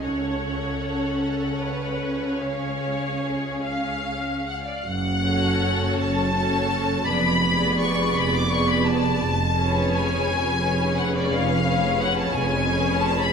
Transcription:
<<
  \new Staff \with { instrumentName = "Violin section" } { \time 12/8 \key fis \minor \tempo 4. = 56 fis''2. eis''4. eis''4 fis''32 eis''32 d''32 eis''32 | fis''4. a''4. ces'''4 cis'''8 ces'''16 d'''16 cis'''16 ces'''16 a''8~ | a''4 gis''4. fis''16 d''16 eis''4 fis''16 a''16 gis''4 a''16 b''16 | }
  \new Staff \with { instrumentName = "Violin section" } { \time 12/8 \key fis \minor << { cis''1~ cis''4. r8 | r8 <a' cis''>4. <a' cis''>4 <ces'' d''>8 <ces'' d''>4. <ces'' d''>4 | r8 <b' cis''>4. <b' cis''>4. <b' cis''>4. <b' cis''>4 | } \\ { a'2. gis'2~ gis'8 r8 | r1. | r1. | } >> }
  \new Staff \with { instrumentName = "Viola section" } { \time 12/8 \key fis \minor cis''4. a'8 b'4 cis''4. eis''4. | r8 <cis' fis'>4. <cis' fis'>4 <ces' aes'>8 <ces' aes'>4. <ces' aes'>4 | r8 <cis' gis'>4. <cis' gis'>4. <cis' gis'>4. <cis' gis'>4 | }
  \new Staff \with { instrumentName = "Cello section" } { \clef bass \time 12/8 \key fis \minor cis'1~ cis'4. r8 | fis,4. fis,4. f,4. f,4. | eis,4. eis,4. eis,4. eis,4. | }
  \new Staff \with { instrumentName = "Double bass section" } { \clef bass \time 12/8 \key fis \minor cis,1~ cis,4. r8 | fis,,4. fis,,4. f,,4. f,,4. | eis,,4. eis,,4. eis,,4. eis,,4. | }
>>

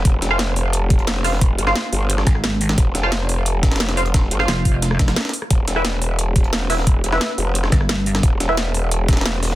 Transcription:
<<
  \new Staff \with { instrumentName = "Synth stab" } { \time 4/4 \key f \lydian \tempo 4 = 176 r8. <f' c'' f''>16 r2 r8 <f' c'' f''>16 r16 | r8. <f' c'' f''>2.~ <f' c'' f''>16~ | <f' c'' f''>8. <f' c'' f''>16 r2 r8 <f' c'' f''>16 r16 | r8. <f' c'' f''>2.~ <f' c'' f''>16 |
r8. <e' b' e''>16 r2 r8 <e' b' e''>16 r16 | r8. <e' b' e''>2.~ <e' b' e''>16~ | <e' b' e''>8. <e' b' e''>16 r2. | }
  \new Staff \with { instrumentName = "Wobble bass" } { \clef bass \time 4/4 \key f \lydian r1 | r2 r8 aes,,4. | r1 | r4 f,,2 r4 |
r1 | r2 r8 g,,4. | r1 | }
  \new Staff \with { instrumentName = "Wobble bass" } { \clef bass \time 4/4 \key f \lydian f,,8 f,,2.~ f,,8~ | f,,8 g,,8 r8 g,,4 r4. | f,,8 f,,2.~ f,,8~ | f,,8 g,,8 r2. |
e,,8 e,,2.~ e,,8~ | e,,8 f,,8 r8 f,,4 r4. | e,,8 e,,2.~ e,,8 | }
  \new DrumStaff \with { instrumentName = "Drums" } \drummode { \time 4/4 <hh bd>8 <hh sn>16 ss16 <hh sn>8 <hh hho>8 hh8 <hh bd>16 hh16 <hh sn>16 sn16 <hho sn>16 sn16 | <hh bd>8 hh16 <ss sn>16 <hh sn>8 <hh hho>8 hh16 <ss sn>16 <hh bd sn>16 ss16 <hh sn>8 <hh hho>16 <hh ss sn>16 | <hh bd>8 <hh sn>16 ss16 <hh sn>8 <hh hho>8 hh8 <hh bd sn>16 <hh sn>32 <hh sn>32 <hh sn>16 <hh sn>16 hho16 hh16 | <hh bd sn>8 hh16 <ss sn>16 <hh sn>8 <hh hho bd>8 <hh sn>16 ss16 <hh bd sn>16 <hh ss sn>16 <hh sn>32 <hh sn>32 <hh sn>32 <hh sn>32 <hh hho>16 ss16 |
<hh bd>8 <hh sn>16 ss16 <hh sn>8 <hh hho>8 hh8 <hh bd>16 hh16 <hh sn>16 sn16 <hho sn>16 sn16 | <hh bd>8 hh16 <ss sn>16 <hh sn>8 <hh hho>8 hh16 <ss sn>16 <hh bd sn>16 ss16 <hh sn>8 <hh hho>16 <hh ss sn>16 | <hh bd>8 <hh sn>16 ss16 <hh sn>8 <hh hho>8 hh8 <hh bd sn>32 <hh sn>32 <hh sn>32 <hh sn>32 <hh sn>16 sn16 <hho sn>16 sn16 | }
>>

